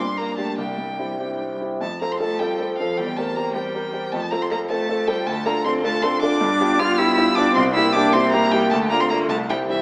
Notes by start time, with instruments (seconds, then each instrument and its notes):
Already playing: grand piano G2, violin C6
0.17 cello A#3, grand piano A#3, violin A#5
0.37 cello A3, grand piano D4 G4, violin A5
0.58 grand piano C2, cello G3, violin G5
0.78 grand piano G2
0.99 grand piano C4 E4 G4
1.19 grand piano C4 E4 G4
1.40 grand piano C4
1.61 grand piano C4 E4 G4
1.80 grand piano F2, cello A3, violin A5
2.01 cello A#3, grand piano C4 F4 A4, violin A#5
2.12 cello C4, violin C6
2.20 cello A3, grand piano C4 F4 A4, violin A5
2.39 cello G3, grand piano C4 F4 A4, violin G5
2.59 grand piano C4 F4 A4
2.78 cello F3, grand piano C4 F4 A4, violin F5
2.97 grand piano E2, cello G3, violin G5
3.17 cello A3, grand piano C4 G4 A#4, violin A5
3.36 cello A#3, grand piano C4 G4 A#4, violin A#5
3.54 cello G3, grand piano C4 G4 A#4, violin G5
3.75 grand piano C4 G4 A#4
3.93 grand piano C4 G4 A#4
4.12 grand piano F2, cello A3, violin A5
4.31 cello A#3, grand piano C4 F4 A4, violin A#5
4.42 cello C4, violin C6
4.51 cello A#3, grand piano C4 F4 A4, violin A#5
4.69 cello A3, grand piano C4 F4 A4, violin A5
4.88 grand piano C4 F4 A4
5.07 cello G3, grand piano C4 F4 A4, violin G5
5.26 grand piano D2, cello A3, violin A5
5.45 cello A#3, grand piano D4 F4 A4, violin A#5
5.65 cello C4, grand piano D4 F4 A4, violin C6
5.83 cello A3, grand piano D4 F4 A4, violin A5
6.02 cello C4, grand piano D4 F4 A4, violin C6
6.22 grand piano D4 F4 A4, cello D4, violin D6
6.41 grand piano G2
6.60 grand piano B3 F4 G4
6.79 grand piano B3 F4 G4, cello F4, violin F6
6.98 grand piano B3 F4 G4, cello E4, violin E6
7.17 grand piano B3 F4 G4
7.35 grand piano B3 F4 G4, cello D4, violin D6
7.55 grand piano C2, cello C4, violin C6
7.74 grand piano A#3 E4 G4, cello E4, violin E6
7.93 grand piano A#3 E4 G4, cello D4, violin D6
8.12 grand piano A#3 E4 G4, cello C4, violin C6
8.32 grand piano A#3 E4 G4, cello A#3, violin A#5
8.51 cello G3, grand piano A#3 E4 G4, violin G5
8.70 grand piano D2, cello A3, violin A5
8.90 grand piano A3 D4 F4, cello A#3, violin A#5
9.00 cello C4, violin C6
9.10 grand piano A3 D4 F4, cello A#3, violin A#5
9.29 grand piano C2, cello A3, violin A5
9.49 cello G3, grand piano C4 E4 G4, violin G5
9.69 cello E3, grand piano C4 E4 G4, violin E5